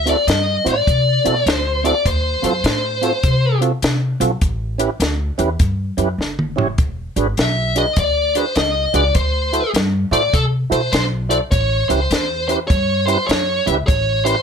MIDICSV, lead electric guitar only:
0, 0, Header, 1, 2, 480
1, 0, Start_track
1, 0, Tempo, 591716
1, 1663, Time_signature, 4, 2, 24, 8
1, 11699, End_track
2, 0, Start_track
2, 0, Title_t, "Lead electric guitar"
2, 0, Program_c, 0, 29
2, 69, Note_on_c, 0, 74, 82
2, 219, Note_off_c, 0, 74, 0
2, 231, Note_on_c, 0, 75, 87
2, 546, Note_off_c, 0, 75, 0
2, 555, Note_on_c, 0, 74, 76
2, 1228, Note_off_c, 0, 74, 0
2, 1228, Note_on_c, 0, 72, 76
2, 1496, Note_off_c, 0, 72, 0
2, 1506, Note_on_c, 0, 74, 80
2, 1658, Note_off_c, 0, 74, 0
2, 1682, Note_on_c, 0, 72, 87
2, 1989, Note_off_c, 0, 72, 0
2, 1999, Note_on_c, 0, 72, 74
2, 2914, Note_off_c, 0, 72, 0
2, 6013, Note_on_c, 0, 76, 92
2, 6311, Note_on_c, 0, 75, 86
2, 6317, Note_off_c, 0, 76, 0
2, 6477, Note_off_c, 0, 75, 0
2, 6482, Note_on_c, 0, 74, 92
2, 6761, Note_off_c, 0, 74, 0
2, 6795, Note_on_c, 0, 72, 78
2, 6946, Note_off_c, 0, 72, 0
2, 6949, Note_on_c, 0, 75, 85
2, 7262, Note_off_c, 0, 75, 0
2, 7265, Note_on_c, 0, 74, 75
2, 7426, Note_off_c, 0, 74, 0
2, 7430, Note_on_c, 0, 72, 73
2, 7873, Note_off_c, 0, 72, 0
2, 8215, Note_on_c, 0, 74, 74
2, 8384, Note_on_c, 0, 69, 80
2, 8388, Note_off_c, 0, 74, 0
2, 8467, Note_off_c, 0, 69, 0
2, 8699, Note_on_c, 0, 72, 81
2, 8853, Note_off_c, 0, 72, 0
2, 8863, Note_on_c, 0, 72, 79
2, 8947, Note_off_c, 0, 72, 0
2, 9168, Note_on_c, 0, 74, 81
2, 9214, Note_off_c, 0, 74, 0
2, 9338, Note_on_c, 0, 73, 101
2, 9627, Note_off_c, 0, 73, 0
2, 9645, Note_on_c, 0, 72, 97
2, 10116, Note_off_c, 0, 72, 0
2, 10126, Note_on_c, 0, 72, 85
2, 10172, Note_off_c, 0, 72, 0
2, 10283, Note_on_c, 0, 73, 94
2, 10579, Note_off_c, 0, 73, 0
2, 10597, Note_on_c, 0, 72, 88
2, 10765, Note_off_c, 0, 72, 0
2, 10768, Note_on_c, 0, 73, 81
2, 11086, Note_on_c, 0, 76, 90
2, 11093, Note_off_c, 0, 73, 0
2, 11133, Note_off_c, 0, 76, 0
2, 11253, Note_on_c, 0, 73, 100
2, 11555, Note_off_c, 0, 73, 0
2, 11559, Note_on_c, 0, 72, 85
2, 11699, Note_off_c, 0, 72, 0
2, 11699, End_track
0, 0, End_of_file